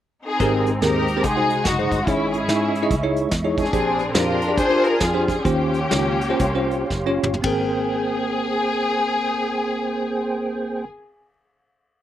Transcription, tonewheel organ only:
0.41 3.70 G#3 medium
0.41 1.23 C5 medium
0.41 1.23 G5 medium
0.41 1.23 A#5 medium
1.24 3.71 D#5 medium
1.24 2.06 F#5 medium
1.24 2.06 C6 medium
2.07 3.72 E5 medium
2.07 3.72 C#6 medium
3.73 5.44 G#4 medium
3.73 5.43 D5 medium
3.73 5.44 G5 medium
3.73 7.40 C6 medium
5.46 7.43 G4 medium
5.46 7.42 C#5 medium
5.46 7.42 F5 medium
7.45 10.85 A#3 medium
7.45 10.85 G#4 medium
7.45 10.85 C5 medium
7.45 10.85 G5 medium

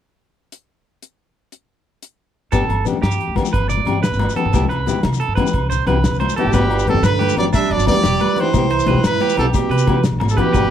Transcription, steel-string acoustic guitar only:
2.52 2.63 B3 medium
2.52 2.63 D4 medium
2.52 2.63 G4 medium
2.85 2.96 B3 medium
2.85 2.96 D4 medium
2.85 2.97 G4 medium
3.36 3.46 B3 soft
3.36 3.47 D4 medium
3.36 3.47 G4 medium
3.85 3.97 D4 medium
3.85 3.97 G4 medium
3.85 muted steel-string acoustic guitar stroke medium
4.35 4.46 B3 medium
4.35 4.47 G4 medium
4.35 muted steel-string acoustic guitar stroke medium
4.53 4.63 B3 medium
4.53 4.64 E4 medium
4.53 4.64 G4 medium
4.86 4.97 B3 medium
4.86 4.97 E4 medium
4.86 4.98 G4 medium
5.37 5.47 B3 soft
5.37 5.48 E4 medium
5.37 5.48 G4 medium
5.87 5.97 B3 medium
5.87 5.97 E4 medium
5.87 5.98 G4 medium
6.38 6.48 B3 medium
6.38 6.49 E4 medium
6.38 6.49 G4 medium
6.53 6.64 B3 medium
6.53 6.64 D4 medium
6.53 muted steel-string acoustic guitar stroke medium
6.87 6.97 B3 soft
6.87 6.98 D4 medium
6.87 6.98 G4 medium
7.37 7.47 B3 soft
7.37 7.48 D4 medium
7.37 7.48 G4 medium
7.88 7.98 B3 medium
7.88 7.98 D4 medium
7.88 7.99 G4 medium
8.38 8.48 B3 medium
8.38 8.48 D4 medium
8.38 8.49 G4 medium
8.55 8.64 E3 medium
8.55 8.65 B3 medium
8.55 8.65 E4 medium
8.55 8.65 G4 medium
8.88 8.98 E3 medium
8.88 8.98 B3 medium
8.88 8.99 G4 medium
8.88 muted steel-string acoustic guitar stroke medium
9.38 9.47 E3 medium
9.38 9.48 B3 medium
9.38 9.48 E4 medium
9.38 9.48 G4 medium
9.87 9.97 E3 medium
9.87 9.98 B3 medium
9.87 9.98 E4 medium
9.87 9.98 G4 medium
10.37 10.47 E3 medium
10.37 10.47 B3 medium
10.37 10.48 E4 medium
10.37 10.48 G4 medium
10.54 10.64 B3 medium
10.54 10.65 D4 medium
10.54 10.65 G4 medium

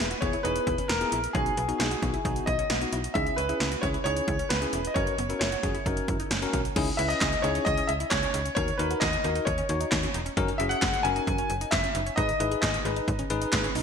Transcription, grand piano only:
0.00 0.23 B4 loud
0.21 0.45 C#5 medium
0.43 0.90 B4 medium
0.88 1.35 A#4 medium
1.33 1.77 G#4 medium
1.78 2.43 G#4 medium
2.46 2.89 D#5 medium
3.14 3.38 E5 loud
3.36 3.84 B4 medium
3.81 3.87 C#5 medium
4.04 4.47 C#5 loud
4.49 4.89 B4 medium
4.87 4.95 D#5 medium
4.94 5.37 C#5 medium
5.39 6.04 C#5 medium
6.97 7.10 E5 loud
7.08 7.44 D#5 loud
7.42 7.66 C#5 loud
7.65 7.89 D#5 loud
7.87 7.93 E5 loud
8.10 8.54 C#5 loud
8.55 8.77 C#5 loud
8.78 8.99 B4 medium
9.00 9.43 D#5 loud
9.45 9.88 C#5 medium
10.58 10.63 E5 medium
10.69 11.02 F#5 loud
11.03 11.68 G#5 loud
11.71 12.18 E5 medium
12.16 12.59 D#5 medium
12.61 13.04 D#5 medium

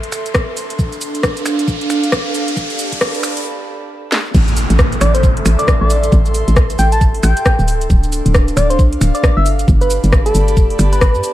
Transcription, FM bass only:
4.35 4.66 A1 loud
4.70 4.99 A1 medium
5.01 5.25 A1 medium
5.23 5.43 G1 medium
5.46 5.57 A1 medium
5.81 6.10 A1 medium
6.12 6.44 A1 loud
6.48 6.76 A1 medium
6.79 7.03 A1 medium
7.01 7.20 G1 medium
7.23 7.34 A1 medium
7.59 7.88 D1 medium
7.90 8.22 D1 loud
8.26 8.54 D1 medium
8.57 8.81 D1 medium
8.79 8.98 C2 medium
9.01 9.12 D1 medium
9.37 9.65 G1 medium
9.68 10.00 G1 loud
10.04 10.32 G1 medium
10.35 10.58 G1 medium
10.57 10.76 F1 medium
10.79 11.16 G1 loud
11.15 11.22 G2 loud

